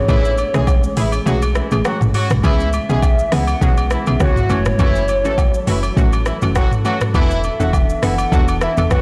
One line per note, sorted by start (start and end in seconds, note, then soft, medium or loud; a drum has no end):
0.00 4.46 G#3 medium
0.00 2.41 A3 medium
0.00 2.41 C#4 medium
0.00 1.56 C#5 loud
0.08 0.44 A1 loud
0.08 0.25 E3 loud
0.08 0.32 E3 loud
0.08 0.25 A3 medium
0.08 0.25 C#4 medium
0.08 0.32 E4 loud
0.08 0.25 G#4 loud
0.08 kick loud
0.08 high agogo medium
0.08 shaker medium
0.25 shaker medium
0.38 high agogo medium
0.38 shaker medium
0.54 0.87 B1 loud
0.54 0.67 E3 medium
0.54 0.65 G#3 medium
0.54 0.67 A3 medium
0.54 0.68 C#4 medium
0.54 0.65 G#4 medium
0.54 0.68 G#4 medium
0.54 cross-stick medium
0.54 shaker soft
0.67 kick medium
0.67 high agogo medium
0.67 low woodblock medium
0.67 shaker medium
0.84 shaker medium
0.97 1.20 A1 medium
0.97 1.13 E3 medium
0.97 1.10 E3 medium
0.97 1.13 A3 medium
0.97 1.13 C#4 medium
0.97 1.10 E4 loud
0.97 1.13 G#4 medium
0.97 open hi-hat medium
0.97 shaker medium
1.12 high agogo medium
1.12 shaker medium
1.26 1.62 B1 loud
1.26 1.42 E3 medium
1.26 1.39 F#3 medium
1.26 1.42 A3 medium
1.26 1.42 C#4 medium
1.26 1.39 F#4 loud
1.26 1.43 G#4 loud
1.26 shaker medium
1.42 high agogo medium
1.42 shaker medium
1.55 1.69 E3 medium
1.55 1.69 E4 medium
1.55 cross-stick medium
1.55 shaker medium
1.71 1.82 A1 medium
1.71 1.85 E3 medium
1.71 1.85 A3 medium
1.71 1.85 C#4 medium
1.71 1.85 G#4 medium
1.71 high agogo medium
1.71 shaker soft
1.85 1.98 F#3 medium
1.85 1.98 F#4 medium
1.85 cross-stick loud
1.85 low woodblock medium
1.85 shaker medium
2.01 2.12 A1 medium
2.01 mid tom loud
2.01 shaker medium
2.14 2.27 F#3 loud
2.14 2.27 F#4 loud
2.14 mid tom medium
2.14 open hi-hat medium
2.14 high agogo medium
2.14 shaker medium
2.30 2.41 B1 medium
2.30 cross-stick loud
2.30 mid tom loud
2.30 shaker medium
2.43 2.79 C#2 loud
2.43 4.48 C#3 medium
2.43 2.60 E3 loud
2.43 2.67 E3 loud
2.43 2.60 B3 medium
2.43 4.48 B3 medium
2.43 2.60 C#4 medium
2.43 7.10 E4 medium
2.43 2.67 E4 loud
2.43 2.60 G#4 loud
2.43 3.35 E5 loud
2.43 kick loud
2.43 high agogo medium
2.43 shaker medium
2.60 shaker medium
2.73 high agogo medium
2.73 shaker medium
2.89 3.23 B1 loud
2.89 3.03 E3 medium
2.89 3.00 G#3 medium
2.89 3.03 B3 medium
2.89 3.03 C#4 medium
2.89 3.00 G#4 medium
2.89 3.03 G#4 medium
2.89 shaker soft
3.02 kick medium
3.02 high agogo medium
3.02 low woodblock medium
3.02 shaker medium
3.19 shaker medium
3.32 3.55 C#2 loud
3.32 3.48 E3 medium
3.32 3.45 E3 medium
3.32 3.48 B3 medium
3.32 3.48 C#4 medium
3.32 3.45 E4 medium
3.32 3.48 G#4 medium
3.32 3.93 F#5 loud
3.32 cross-stick medium
3.32 open hi-hat medium
3.32 shaker medium
3.47 high agogo medium
3.47 shaker medium
3.61 3.97 B1 loud
3.61 3.78 E3 medium
3.61 3.75 F#3 medium
3.61 3.78 B3 medium
3.61 3.78 C#4 medium
3.61 3.75 F#4 loud
3.61 3.78 G#4 loud
3.61 kick loud
3.61 shaker medium
3.77 high agogo medium
3.77 shaker medium
3.90 4.04 E3 medium
3.90 4.04 E4 medium
3.90 4.21 E5 loud
3.90 cross-stick medium
3.90 shaker medium
4.06 4.17 B1 loud
4.06 4.20 E3 medium
4.06 4.20 B3 medium
4.06 4.20 C#4 medium
4.06 4.21 G#4 medium
4.06 high agogo medium
4.06 shaker soft
4.20 4.43 C#2 loud
4.20 4.63 F#3 medium
4.20 4.63 F#4 loud
4.20 4.34 C#5 medium
4.20 kick loud
4.20 cross-stick loud
4.20 low woodblock medium
4.20 shaker medium
4.36 mid tom loud
4.36 shaker medium
4.49 4.73 F#1 loud
4.49 4.77 E3 loud
4.49 7.12 F#3 medium
4.49 4.77 A3 medium
4.49 7.12 C#4 medium
4.49 4.77 C#4 medium
4.49 4.77 F#4 loud
4.49 9.02 A4 medium
4.49 6.23 C#5 loud
4.49 high agogo medium
4.49 shaker medium
4.65 cross-stick loud
4.65 mid tom loud
4.65 shaker medium
4.79 5.26 F#1 loud
4.79 4.95 E3 medium
4.79 5.03 E3 loud
4.79 4.95 A3 medium
4.79 4.95 C#4 medium
4.79 5.03 E4 loud
4.79 4.96 F#4 loud
4.79 kick loud
4.79 high agogo medium
4.79 shaker medium
4.95 shaker medium
5.08 high agogo medium
5.08 shaker medium
5.24 5.58 A1 medium
5.24 5.38 E3 medium
5.24 5.38 A3 medium
5.24 5.35 A3 medium
5.24 5.38 C#4 medium
5.24 5.38 F#4 medium
5.24 5.35 A4 loud
5.24 shaker soft
5.38 kick medium
5.38 high agogo medium
5.38 low woodblock medium
5.38 shaker medium
5.54 shaker medium
5.67 5.90 F#1 medium
5.67 5.83 E3 medium
5.67 5.80 E3 medium
5.67 5.84 A3 medium
5.67 5.84 C#4 medium
5.67 5.80 E4 loud
5.67 5.84 F#4 medium
5.67 open hi-hat medium
5.67 shaker medium
5.83 high agogo medium
5.83 shaker medium
5.97 6.32 A1 loud
5.97 6.13 E3 medium
5.97 6.10 F#3 medium
5.97 6.13 A3 medium
5.97 6.13 C#4 medium
5.97 6.10 F#4 medium
5.97 6.13 F#4 loud
5.97 kick loud
5.97 shaker medium
6.13 high agogo medium
6.13 shaker medium
6.26 6.39 E3 medium
6.26 6.39 E4 medium
6.26 cross-stick medium
6.26 shaker medium
6.42 6.65 F#1 medium
6.42 6.56 E3 medium
6.42 6.56 A3 medium
6.42 6.56 C#4 medium
6.42 6.56 F#4 medium
6.42 high agogo medium
6.42 shaker soft
6.55 6.69 F#3 medium
6.55 6.69 F#4 loud
6.55 kick loud
6.55 cross-stick loud
6.55 low woodblock medium
6.55 shaker medium
6.72 mid tom loud
6.72 shaker medium
6.85 7.01 E3 medium
6.85 6.98 F#3 loud
6.85 7.01 A3 medium
6.85 7.01 C#4 medium
6.85 6.98 F#4 loud
6.85 7.01 F#4 medium
6.85 high agogo medium
6.85 shaker medium
7.01 cross-stick medium
7.01 mid tom loud
7.01 shaker medium
7.14 7.50 E1 loud
7.14 7.31 E3 loud
7.14 9.02 E3 medium
7.14 7.38 E3 loud
7.14 9.02 B3 medium
7.14 7.31 B3 medium
7.14 9.02 D4 medium
7.14 7.31 D4 medium
7.14 7.38 E4 loud
7.14 7.31 A4 loud
7.14 8.06 E5 loud
7.14 kick loud
7.14 high agogo medium
7.14 shaker medium
7.31 shaker medium
7.44 high agogo medium
7.44 shaker medium
7.60 7.93 E1 medium
7.60 7.73 E3 medium
7.60 7.71 F#3 medium
7.60 7.73 B3 medium
7.60 7.73 D4 medium
7.60 7.71 F#4 medium
7.60 7.73 A4 medium
7.60 shaker soft
7.73 kick medium
7.73 high agogo medium
7.73 low woodblock medium
7.73 shaker medium
7.90 shaker medium
8.02 8.26 F#1 medium
8.02 8.19 E3 medium
8.02 8.16 E3 medium
8.02 8.19 B3 medium
8.02 8.19 D4 medium
8.02 8.16 E4 medium
8.02 8.19 A4 medium
8.02 8.64 F#5 loud
8.02 cross-stick medium
8.02 open hi-hat medium
8.02 shaker medium
8.18 high agogo medium
8.18 shaker medium
8.32 8.67 E1 loud
8.32 8.48 E3 medium
8.32 8.45 F#3 medium
8.32 8.48 B3 medium
8.32 8.48 D4 medium
8.32 8.45 F#4 loud
8.32 8.48 A4 loud
8.32 kick loud
8.32 shaker medium
8.48 high agogo medium
8.48 shaker medium
8.61 8.74 E3 medium
8.61 8.74 E4 medium
8.61 8.92 E5 loud
8.61 cross-stick medium
8.61 shaker medium
8.77 8.88 E1 loud
8.77 8.91 E3 medium
8.77 8.91 B3 medium
8.77 8.91 D4 medium
8.77 8.91 A4 medium
8.77 high agogo medium
8.77 shaker soft
8.91 9.02 F#1 loud
8.91 9.02 F#3 loud
8.91 9.02 F#4 loud
8.91 9.02 B4 medium
8.91 kick loud
8.91 cross-stick loud
8.91 low woodblock medium
8.91 shaker medium